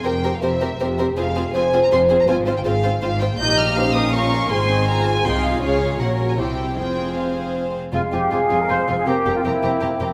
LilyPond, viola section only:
\new Staff \with { instrumentName = "Viola section" } { \time 3/4 \key f \minor \tempo 4 = 161 << { g'8 g'8 g'8 g'8 g'8 g'8 | f'8 f'8 f'8 f'8 f'8 f'8 | f'8 f'8 f'8 f'8 f'8 f'8 | g'2 f'4 |
f'8 ees'8 f'2~ | f'4 ges'4 e'4 | f'2~ f'8 r8 | r2. |
r2. | } \\ { c'8 c'8 c'8 c'8 c'8 c'8 | c'8 c'8 c'8 c'8 c'8 c'8 | c'8 c'8 c'8 c'8 c'8 c'8 | ees'2 des'8 bes8 |
c'2 ees'4 | des'4 des'4 c'4 | c'2~ c'8 r8 | c'8 c'8 c'8 c'8 c'8 c'8 |
c'8 c'8 c'8 c'8 c'8 c'8 | } >> }